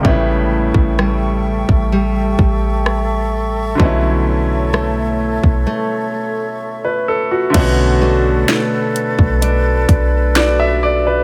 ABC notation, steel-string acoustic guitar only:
X:1
M:4/4
L:1/8
Q:1/4=64
K:Bm
V:1 name="Steel-string acoustic guitar"
[A,,E]2 G,2 G,4 | [B,,E]2 A,2 A,4 | [B,,F] [A,DF] A,2 D2 F2 |]